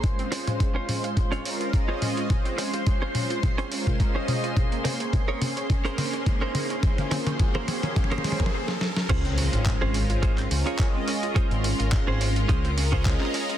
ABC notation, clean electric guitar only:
X:1
M:4/4
L:1/16
Q:"Swing 16ths" 1/4=106
K:Bbm
V:1 name="Clean electric guitar"
z4 z [DFc] z3 [DFd]2 z2 [DFc]3 | z4 z [DFc] z3 [DFc]2 z2 [DFc]3 | z4 z [DABd] z3 [DABc]2 z2 [DABc]3 | z4 z [DABc] z3 [DABc]2 z4 z |
[DFAc] z4 [DFAc] z2 [DFAc] z2 [DFAd] z4 | [DFAc] z4 [DFAc] z2 [DFAc] z2 [DFAc] z4 |]